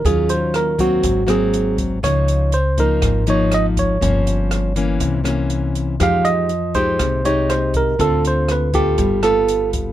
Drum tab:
HH |xxxxxxxx|xxxxxxxx|xxxxxxxx|xxxxxxxx|
SD |--r--r--|r---r-r-|--r--r--|r---r-r-|
BD |o--oo--o|o--oo--o|o---o---|o--oo--o|

HH |xxxxxxxx|
SD |--r--r--|
BD |o--oo--o|